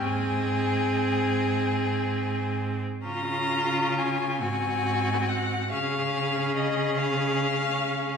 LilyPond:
<<
  \new Staff \with { instrumentName = "Violin" } { \time 6/8 \key aes \major \tempo 4. = 45 aes''2~ aes''8 r8 | \key des \major bes''4 aes''8 aes''4 ges''8 | f''4 ees''8 f''4. | }
  \new Staff \with { instrumentName = "Violin" } { \time 6/8 \key aes \major aes'2~ aes'8. r16 | \key des \major f'4. ges'4. | aes'2. | }
  \new Staff \with { instrumentName = "Viola" } { \time 6/8 \key aes \major c'2~ c'8. r16 | \key des \major des'4. c'4. | des'2. | }
  \new Staff \with { instrumentName = "Cello" } { \clef bass \time 6/8 \key aes \major aes,2~ aes,8. r16 | \key des \major des4. aes,4. | des2. | }
>>